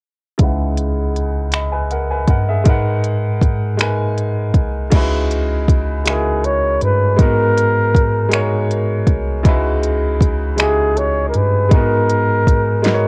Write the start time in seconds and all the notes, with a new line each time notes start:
0.38 C#2 C#3 G#3 D#4 E4, kick, closed hi-hat
0.42 B4 F#5
0.77 closed hi-hat
1.16 closed hi-hat
1.52 D#5 B5, finger snap, closed hi-hat
1.72 B4 G#5
1.91 A#4 F#5, closed hi-hat
2.11 B4 G#5
2.28 G2 A#4 F#5, kick, closed hi-hat
2.49 G#4 E5
2.64 G#2 G#3 D#4 A#4, kick, closed hi-hat
2.68 B4 F#5
3.04 closed hi-hat
3.42 kick, closed hi-hat
3.77 G#3 D#4 A#4, finger snap, closed hi-hat
3.81 B4 G#5
4.18 closed hi-hat
4.54 C2, kick, closed hi-hat
4.90 C#2 C#3 G#3 D#4 E4, kick, closed hi-hat, crash
4.95 F#4 B4
5.31 closed hi-hat
5.68 kick, closed hi-hat
6.04 C#3 G#3 D#4 E4, finger snap, closed hi-hat
6.08 F#4 G#4 A#4
6.44 C#5, closed hi-hat
6.81 G2 B4, closed hi-hat
7.16 G#2 G#3 D#4 F#4, kick, closed hi-hat
7.20 B3 A#4
7.57 closed hi-hat
7.95 kick, closed hi-hat
8.29 G#3 D#4 F#4, closed hi-hat
8.33 A#4 C#5, finger snap
8.71 closed hi-hat
9.07 C2, kick, closed hi-hat
9.43 C#2 C#3 G#3 D#4 E4, kick, closed hi-hat
9.48 F#4 B4
9.83 closed hi-hat
10.21 kick, closed hi-hat
10.56 C#3 G#3 D#4 E4 G#4, finger snap, closed hi-hat
10.60 F#4 G4
10.68 G#4
10.97 C#5, closed hi-hat
11.29 A#4
11.34 G2 B4, closed hi-hat
11.69 G#2 G#3 D#4 F#4, kick, closed hi-hat
11.73 B3 A#4
12.10 closed hi-hat
12.47 kick, closed hi-hat
12.82 G#3 D#4 F#4, snare, closed hi-hat
12.86 A#4 B4
12.94 C#5